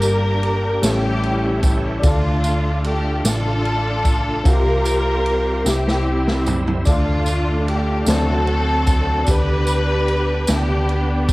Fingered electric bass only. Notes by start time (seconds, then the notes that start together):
Already playing: G1
0.83 A1
2.04 D2
3.24 A1
4.46 C2
5.66 C2
6.87 D2
8.07 D2
9.28 D2
10.49 D2